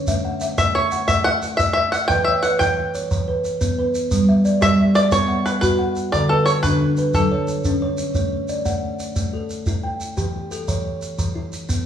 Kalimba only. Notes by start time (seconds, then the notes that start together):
Already playing: C#5
0.08 A3 E5
0.25 F#5
0.41 E5
0.59 A3
0.92 F#5
1.09 A3
1.25 E5
1.60 E4
1.77 E5
2.10 E3 B4
2.27 C#5
2.44 B4
2.61 E3 E4
2.95 C#5
3.11 E3
3.28 B4
3.61 B3
3.79 B4
4.11 G3
4.29 E5
4.45 D5
4.61 G3 G4
4.95 E5
5.12 B3
5.28 F#5
5.62 F#4
5.79 F#5
6.13 D3 A4
6.30 B4
6.47 A4
6.64 D3 D4
6.98 B4
7.15 F#3
7.32 C#5
7.65 C#4
7.82 C#5
8.15 A3 C#5
8.49 D5
8.65 A3 F#5
9.16 A3
9.33 A4
9.67 E4
9.83 G5
10.17 E3 G4
10.51 A4
10.68 E3 C#5
11.18 E3
11.35 E4
11.69 B3